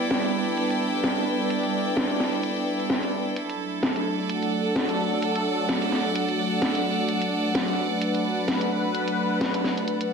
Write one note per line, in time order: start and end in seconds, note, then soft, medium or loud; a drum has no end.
0.00 3.32 G3 medium
0.00 3.32 B3 medium
0.00 3.33 D4 medium
0.00 4.23 E4 medium
0.00 3.35 A4 medium
0.00 3.32 B4 medium
0.00 3.36 D5 medium
0.00 3.36 G5 medium
0.11 snare loud
0.11 closed hi-hat medium
0.24 closed hi-hat soft
0.57 closed hi-hat medium
0.70 closed hi-hat soft
1.04 snare loud
1.04 closed hi-hat medium
1.17 closed hi-hat soft
1.50 closed hi-hat medium
1.63 closed hi-hat soft
1.97 snare loud
1.97 closed hi-hat medium
2.10 closed hi-hat soft
2.20 snare medium
2.33 closed hi-hat soft
2.43 closed hi-hat medium
2.56 closed hi-hat soft
2.80 closed hi-hat soft
2.90 snare loud
2.90 closed hi-hat medium
3.03 closed hi-hat soft
3.36 10.13 F#3 medium
3.36 10.13 A3 medium
3.36 10.13 D4 medium
3.36 7.05 A4 medium
3.36 10.13 A4 medium
3.36 closed hi-hat medium
3.50 closed hi-hat soft
3.83 snare loud
3.83 closed hi-hat medium
3.96 closed hi-hat soft
4.13 10.13 D5 medium
4.29 10.13 F#5 medium
4.29 closed hi-hat medium
4.43 closed hi-hat soft
4.76 snare loud
4.76 closed hi-hat medium
4.89 closed hi-hat soft
5.22 closed hi-hat medium
5.36 closed hi-hat soft
5.69 snare loud
5.69 closed hi-hat medium
5.82 closed hi-hat soft
5.92 snare medium
6.16 closed hi-hat medium
6.29 closed hi-hat soft
6.62 snare loud
6.62 closed hi-hat medium
6.75 closed hi-hat soft
7.09 10.13 B4 medium
7.09 closed hi-hat medium
7.22 closed hi-hat medium
7.55 snare loud
7.55 closed hi-hat medium
7.68 closed hi-hat soft
8.02 closed hi-hat medium
8.15 closed hi-hat medium
8.48 snare loud
8.48 closed hi-hat medium
8.61 closed hi-hat medium
8.95 closed hi-hat medium
9.08 closed hi-hat medium
9.41 snare loud
9.41 closed hi-hat medium
9.54 closed hi-hat medium
9.64 snare medium
9.77 closed hi-hat soft
9.88 closed hi-hat medium
10.01 closed hi-hat medium